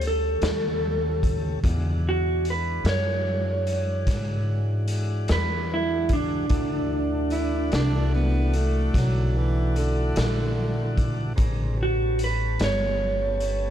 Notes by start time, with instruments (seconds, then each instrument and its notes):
Already playing: upright bass D2, tonewheel organ G3 A3 C#4 A4
0.01 closed hi-hat
0.07 clean electric guitar A4
0.42 upright bass D#2, snare, closed hi-hat
1.23 kick, closed hi-hat
1.63 upright bass E2, tonewheel organ E3 G#3 D4 F#4, kick, closed hi-hat
2.09 clean electric guitar F#4
2.45 closed hi-hat
2.50 clean electric guitar B4
2.84 upright bass F#2, snare, closed hi-hat
2.89 clean electric guitar C#5
3.67 closed hi-hat
4.07 upright bass G#2, kick, snare, closed hi-hat
4.88 closed hi-hat
5.28 upright bass E2, snare, closed hi-hat
5.32 clean electric guitar B4
5.74 clean electric guitar E4
6.09 kick, closed hi-hat
6.13 clean electric guitar D4
6.49 upright bass D2, tonewheel organ E3 A3 D4 F#4, kick, closed hi-hat
7.31 tenor saxophone E4, closed hi-hat
7.72 upright bass C2, tenor saxophone D4, snare, closed hi-hat
8.15 tenor saxophone B3
8.53 tenor saxophone A3, closed hi-hat
8.94 upright bass B1, tenor saxophone F#3, kick, snare, closed hi-hat
9.38 tenor saxophone E3
9.76 tenor saxophone D3, closed hi-hat
10.16 upright bass A#1, snare, closed hi-hat
10.98 kick, closed hi-hat
11.36 upright bass A1, tonewheel organ G#3 C4 D4 A#4, kick, closed hi-hat
11.77 tonewheel organ G3 B3 C#4 A4
11.83 clean electric guitar F#4
12.19 closed hi-hat
12.24 clean electric guitar B4
12.60 upright bass G1, snare, closed hi-hat
12.64 clean electric guitar C#5
13.40 closed hi-hat